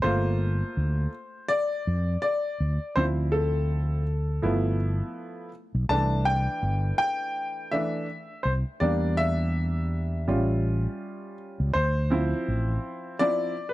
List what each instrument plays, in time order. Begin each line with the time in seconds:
0.02 fretless electric bass G1, grand piano A3 A#3 F4 C5
0.77 fretless electric bass D2
1.48 grand piano D5
1.87 fretless electric bass F2
2.22 grand piano D5
2.60 fretless electric bass D2
2.96 fretless electric bass D2, grand piano F3 C4 E4 C5
3.32 grand piano A4
4.42 fretless electric bass G1, grand piano F3 A3 B3 E4
5.75 fretless electric bass B1
5.89 fretless electric bass C2, grand piano E3 A3 D4 A5
6.25 grand piano G5
6.63 fretless electric bass G1
6.98 grand piano G5
7.71 grand piano E3 A3 D4 E5
8.43 fretless electric bass C2, grand piano C5
8.80 fretless electric bass E2, grand piano G3 A#3 D4 D5
9.17 grand piano E5
10.28 fretless electric bass A1, grand piano G3 C#4 F4
11.60 fretless electric bass C#2
11.73 fretless electric bass D2, grand piano C5
12.10 grand piano F3 C4 E4
12.48 fretless electric bass A1
13.19 grand piano F3 C4 E4 D5
13.69 grand piano B4